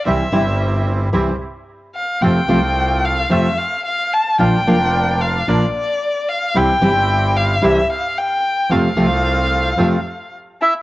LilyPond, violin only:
\new Staff \with { instrumentName = "Violin" } { \time 4/4 \key f \major \tempo 4 = 111 e''4. r2 f''8 | g''4. f''8 e''8 f''8 f''8 a''8 | g''4. f''8 d''4. f''8 | g''4. f''8 e''8 f''8 g''4 |
f''2. r8 e'8 | }